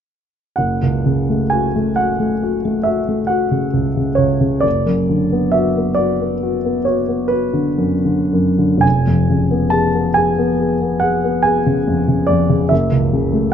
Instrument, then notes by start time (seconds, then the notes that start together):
grand piano
0.56 F#1 F#5
0.83 C#2
1.06 C#3
1.30 A3
1.50 F#4 G#5
1.76 A3
1.96 F#4 F#5
2.20 A3
2.43 F#4
2.65 A3
2.83 F#4 E5
3.09 A3
3.27 F#4 F#5
3.51 C#3
3.74 C#2
3.96 C#3
4.15 C#2 C#5
4.41 C#3
4.61 F#1 D5
4.86 F#2
5.09 D3
5.32 B3
5.52 F#4 E5
5.77 B3
5.95 F#4 D5
6.21 B3
6.43 F#4
6.65 B3
6.85 F#4 C#5
7.09 B3
7.28 F#4 B4
7.53 D3
7.78 F#2
8.05 D3
8.33 F#2
8.59 D3
8.77 F1
8.81 G#5
9.07 F2
9.30 C#3
9.51 B3
9.70 G#4 A5
9.95 B3
10.14 G#4 G#5
10.38 B3
10.60 G#4
10.82 B3
11.00 G#4 F#5
11.24 B3
11.43 G#4 G#5
11.66 C#3
11.88 F2
12.08 C#3
12.27 F2 D5
12.49 C#3
12.69 F#1 E5
12.92 C#2
13.13 C#3
13.33 A3